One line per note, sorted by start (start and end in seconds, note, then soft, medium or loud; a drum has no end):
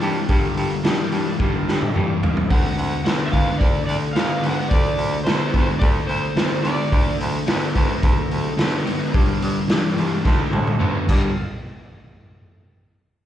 0.00 0.26 G2 medium
0.00 0.19 G2 medium
0.00 0.27 E3 medium
0.00 0.27 A#3 medium
0.00 0.27 D4 medium
0.00 0.27 F4 medium
0.00 0.27 A4 medium
0.00 open hi-hat medium
0.28 0.79 G2 medium
0.28 0.47 G2 medium
0.28 0.79 D3 medium
0.28 2.47 A#3 medium
0.28 2.48 D4 medium
0.28 2.48 F4 medium
0.28 2.48 A4 medium
0.28 kick loud
0.28 open hi-hat medium
0.57 0.74 G2 medium
0.57 open hi-hat medium
0.83 1.09 G2 medium
0.83 1.02 G2 medium
0.83 1.09 E3 medium
0.83 snare loud
0.83 open hi-hat medium
1.11 1.37 G2 medium
1.11 1.29 G2 medium
1.11 1.37 E3 medium
1.11 open hi-hat medium
1.39 1.89 G2 medium
1.39 1.57 G2 medium
1.39 1.90 D3 medium
1.39 kick loud
1.67 1.84 G2 medium
1.67 snare medium
1.82 mid tom medium
1.94 2.12 G2 medium
1.94 2.20 G2 medium
1.94 2.20 E3 medium
1.94 mid tom medium
2.22 2.47 G2 medium
2.22 2.48 E3 medium
2.22 floor tom medium
2.37 floor tom medium
2.49 2.68 D2 medium
2.49 3.00 D3 medium
2.49 3.01 A3 medium
2.49 2.68 C#4 medium
2.49 2.68 E4 medium
2.49 2.68 G4 medium
2.49 2.68 A#4 medium
2.49 2.77 F#5 loud
2.49 kick loud
2.49 open hi-hat medium
2.67 4.69 C4 medium
2.67 4.69 D#4 medium
2.67 4.68 F#4 medium
2.67 4.69 A4 medium
2.77 2.95 D2 medium
2.77 3.03 F#5 medium
2.77 open hi-hat medium
3.04 3.23 D2 medium
3.04 3.30 D3 medium
3.04 3.30 B3 medium
3.04 3.10 F#5 loud
3.04 snare loud
3.04 open hi-hat medium
3.26 3.31 E5 medium
3.31 3.51 D2 medium
3.31 3.58 D3 medium
3.31 3.58 B3 medium
3.31 3.58 F5 medium
3.31 kick medium
3.31 open hi-hat medium
3.58 3.78 D2 medium
3.58 4.10 D3 medium
3.58 4.10 A3 medium
3.58 3.85 D5 medium
3.58 kick loud
3.58 open hi-hat medium
3.87 4.05 D2 medium
3.87 3.94 D5 medium
3.87 open hi-hat medium
4.13 4.33 D2 medium
4.13 4.41 D3 medium
4.13 4.41 B3 medium
4.13 4.49 F5 medium
4.13 snare loud
4.13 open hi-hat medium
4.43 4.61 D2 medium
4.43 4.68 D3 medium
4.43 4.68 B3 medium
4.43 open hi-hat medium
4.49 4.68 F#5 medium
4.68 4.89 D2 medium
4.68 5.21 D3 medium
4.68 6.90 A3 medium
4.68 5.21 A3 medium
4.68 6.90 C4 medium
4.68 6.90 D#4 medium
4.68 6.90 F#4 medium
4.68 5.24 D5 medium
4.68 kick loud
4.68 open hi-hat medium
4.97 5.15 D2 medium
4.97 open hi-hat medium
5.24 5.43 D2 loud
5.24 5.52 D3 medium
5.24 5.52 B3 medium
5.24 5.58 C5 medium
5.24 snare loud
5.24 open hi-hat medium
5.53 5.71 D2 medium
5.53 5.79 D3 medium
5.53 5.79 B3 medium
5.53 kick medium
5.53 open hi-hat soft
5.59 5.63 B4 medium
5.59 5.66 C5 medium
5.79 5.99 D2 medium
5.79 6.31 D3 medium
5.79 6.32 A3 medium
5.79 5.87 D5 medium
5.79 kick loud
5.79 open hi-hat medium
6.07 6.26 D2 medium
6.07 6.65 C5 medium
6.07 open hi-hat soft
6.36 6.54 D2 medium
6.36 6.62 D3 medium
6.36 6.62 B3 medium
6.36 snare loud
6.36 open hi-hat medium
6.63 6.82 D2 medium
6.63 6.89 D3 medium
6.63 6.90 B3 medium
6.63 7.16 D5 medium
6.63 open hi-hat medium
6.92 7.10 D2 medium
6.92 7.42 D3 medium
6.92 9.12 F#3 medium
6.92 7.42 A3 medium
6.92 9.12 A3 medium
6.92 9.12 C4 medium
6.92 9.12 D#4 medium
6.92 kick loud
6.92 open hi-hat medium
7.20 7.38 D2 medium
7.20 open hi-hat medium
7.46 7.65 D2 loud
7.46 7.72 D3 medium
7.46 7.72 B3 medium
7.46 snare loud
7.46 open hi-hat medium
7.75 7.93 D2 medium
7.75 8.00 D3 medium
7.75 8.01 B3 medium
7.75 kick medium
7.75 open hi-hat medium
8.02 8.21 D2 medium
8.02 8.53 D3 medium
8.02 8.53 A3 medium
8.02 kick loud
8.02 open hi-hat medium
8.31 8.49 D2 medium
8.31 open hi-hat medium
8.57 8.76 D2 medium
8.57 8.83 D3 medium
8.57 8.83 B3 medium
8.57 snare loud
8.57 open hi-hat medium
8.85 9.11 D3 medium
8.85 9.11 B3 medium
8.85 open hi-hat medium
9.12 9.63 G2 medium
9.12 9.32 G2 medium
9.12 9.63 D3 medium
9.12 10.24 A#3 medium
9.12 10.24 D4 medium
9.12 10.24 F4 medium
9.12 10.24 A4 medium
9.12 kick loud
9.12 open hi-hat medium
9.42 9.60 G2 medium
9.42 open hi-hat medium
9.68 9.94 G2 medium
9.68 9.87 G2 medium
9.68 9.94 E3 medium
9.68 snare loud
9.68 open hi-hat medium
9.96 10.15 C2 medium
9.96 10.22 G2 medium
9.96 10.22 E3 medium
9.96 open hi-hat medium
10.24 10.42 D2 medium
10.24 10.74 D3 medium
10.24 10.75 A3 medium
10.24 11.08 C4 medium
10.24 11.08 D#4 medium
10.24 11.08 F#4 medium
10.24 11.07 A4 medium
10.24 kick loud
10.24 snare medium
10.52 10.69 D2 medium
10.52 mid tom medium
10.67 mid tom medium
10.79 10.97 D2 medium
10.79 11.05 D3 medium
10.79 11.05 B3 medium
10.79 mid tom medium
11.07 11.30 G2 medium
11.07 11.34 G2 medium
11.07 11.30 D3 loud
11.07 11.31 G3 medium
11.07 11.46 A#3 medium
11.07 11.47 D4 medium
11.07 11.46 F4 medium
11.07 11.46 A4 medium
11.07 kick loud
11.07 crash medium